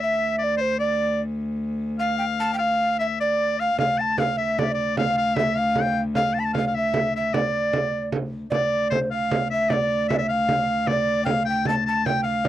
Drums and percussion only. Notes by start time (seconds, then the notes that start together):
3.78 frame drum
3.99 frame drum
4.18 frame drum
4.39 frame drum
4.59 frame drum
4.97 frame drum
5.17 frame drum
5.36 frame drum
5.56 frame drum
5.75 frame drum
6.15 frame drum
6.36 frame drum
6.55 frame drum
6.75 frame drum
6.94 frame drum
7.34 frame drum
7.73 frame drum
8.12 frame drum
8.32 frame drum
8.52 frame drum
8.92 frame drum
9.31 frame drum
9.51 frame drum
9.70 frame drum
10.10 frame drum
10.49 frame drum
10.69 frame drum
10.87 frame drum
11.26 frame drum
11.65 frame drum
11.86 frame drum
12.06 frame drum
12.45 frame drum